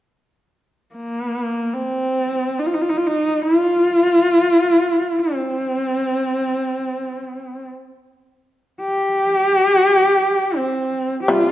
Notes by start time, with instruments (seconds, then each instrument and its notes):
0.95 horsehead fiddle A#3
1.73 horsehead fiddle C4
2.59 horsehead fiddle D#4
2.66 horsehead fiddle F4
2.74 horsehead fiddle D#4
2.81 horsehead fiddle F4
2.89 horsehead fiddle D#4
2.97 horsehead fiddle F4
3.06 horsehead fiddle D#4
3.42 horsehead fiddle F4
5.18 horsehead fiddle C4
8.81 horsehead fiddle G4
10.56 horsehead fiddle C4
11.22 horsehead fiddle G4
11.28 shamisen C3 G3, horsehead fiddle F4